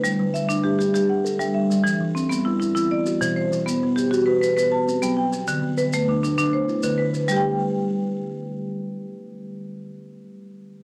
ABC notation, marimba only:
X:1
M:12/8
L:1/8
Q:3/8=133
K:Dmix
V:1 name="Marimba"
B z e2 G G2 f3 e2- | e z C2 E E2 d3 c2- | c z G2 B B2 a3 g2- | g z B2 D D2 c3 B2- |
B z8 z3 | z12 |]
V:2 name="Marimba"
G,2 z D2 z G2 z G,2 z | E,2 z B,2 z E2 z E,2 z | B,2 z F2 z B2 z B,2 z | D,2 z A,2 z D2 z D,2 z |
[G,Gg]12- | [G,Gg]12 |]